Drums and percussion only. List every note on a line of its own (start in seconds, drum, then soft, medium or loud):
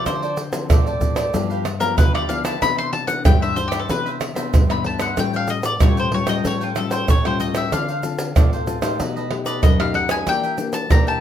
0.06 pandeiro medium
0.06 tamborim medium
0.06 shaker medium
0.06 surdo medium
0.23 pandeiro soft
0.23 shaker soft
0.37 pandeiro medium
0.37 shaker medium
0.53 pandeiro medium
0.53 shaker medium
0.70 pandeiro medium
0.70 tamborim medium
0.70 shaker medium
0.70 surdo loud
0.87 pandeiro soft
0.87 shaker soft
1.01 pandeiro medium
1.01 shaker medium
1.01 surdo medium
1.16 pandeiro medium
1.16 tamborim medium
1.16 shaker medium
1.34 pandeiro medium
1.34 shaker medium
1.34 surdo medium
1.50 pandeiro soft
1.50 shaker soft
1.65 pandeiro medium
1.65 tamborim medium
1.65 shaker medium
1.81 pandeiro medium
1.81 shaker medium
1.98 pandeiro medium
1.98 tamborim medium
1.98 shaker medium
1.98 surdo loud
2.15 pandeiro soft
2.15 tamborim medium
2.15 shaker soft
2.29 pandeiro medium
2.29 shaker medium
2.45 pandeiro medium
2.45 tamborim medium
2.45 shaker medium
2.62 pandeiro medium
2.62 tamborim medium
2.62 shaker medium
2.62 surdo medium
2.78 pandeiro soft
2.78 shaker soft
2.93 pandeiro medium
3.08 pandeiro medium
3.08 shaker medium
3.25 pandeiro medium
3.25 tamborim medium
3.25 shaker medium
3.25 surdo loud
3.42 pandeiro soft
3.42 shaker soft
3.57 pandeiro medium
3.57 shaker medium
3.72 pandeiro medium
3.72 tamborim medium
3.72 shaker medium
3.89 pandeiro medium
3.89 shaker medium
3.89 surdo medium
4.06 pandeiro soft
4.06 shaker soft
4.21 pandeiro medium
4.21 tamborim medium
4.21 shaker medium
4.36 pandeiro medium
4.36 shaker medium
4.54 pandeiro medium
4.54 tamborim medium
4.54 shaker medium
4.54 surdo loud
4.70 pandeiro soft
4.70 tamborim medium
4.70 shaker soft
4.84 pandeiro medium
5.00 pandeiro medium
5.00 tamborim medium
5.00 shaker medium
5.17 pandeiro medium
5.17 tamborim medium
5.17 shaker medium
5.17 surdo medium
5.34 pandeiro soft
5.34 shaker soft
5.48 pandeiro medium
5.48 shaker medium
5.63 pandeiro medium
5.63 shaker medium
5.80 pandeiro medium
5.80 tamborim medium
5.80 shaker medium
5.80 surdo loud
5.97 pandeiro soft
5.97 shaker soft
6.12 pandeiro medium
6.27 pandeiro medium
6.27 tamborim medium
6.27 shaker medium
6.45 pandeiro medium
6.45 shaker medium
6.45 surdo medium
6.61 pandeiro soft
6.61 shaker soft
6.76 pandeiro medium
6.76 tamborim medium
6.76 shaker medium
6.91 pandeiro medium
6.91 shaker medium
7.08 pandeiro medium
7.08 tamborim medium
7.08 shaker medium
7.08 surdo medium
7.25 pandeiro soft
7.25 tamborim medium
7.25 shaker soft
7.40 pandeiro medium
7.40 shaker medium
7.55 pandeiro medium
7.55 tamborim medium
7.55 shaker medium
7.72 pandeiro medium
7.72 tamborim medium
7.72 shaker medium
7.72 surdo medium
7.89 pandeiro soft
7.89 shaker soft
8.03 pandeiro medium
8.03 shaker medium
8.19 pandeiro medium
8.19 shaker medium
8.36 pandeiro medium
8.36 tamborim medium
8.36 shaker medium
8.36 surdo loud
8.53 pandeiro soft
8.53 shaker soft
8.67 pandeiro medium
8.67 shaker medium
8.82 pandeiro medium
8.82 tamborim medium
8.82 shaker medium
9.00 pandeiro medium
9.00 shaker medium
9.00 surdo medium
9.17 pandeiro soft
9.17 shaker soft
9.31 pandeiro medium
9.31 tamborim medium
9.46 pandeiro medium
9.46 shaker medium
9.63 pandeiro medium
9.63 tamborim medium
9.63 shaker medium
9.63 surdo loud
9.80 pandeiro soft
9.80 tamborim medium
9.80 shaker soft
9.94 pandeiro medium
10.09 pandeiro medium
10.09 tamborim medium
10.09 shaker medium
10.27 pandeiro medium
10.27 tamborim medium
10.27 shaker medium
10.27 surdo medium
10.43 pandeiro soft
10.43 shaker soft
10.58 pandeiro medium
10.58 shaker medium
10.73 pandeiro medium
10.73 shaker medium
10.90 pandeiro medium
10.90 tamborim medium
10.90 shaker medium
10.90 surdo loud
11.07 pandeiro soft
11.07 shaker soft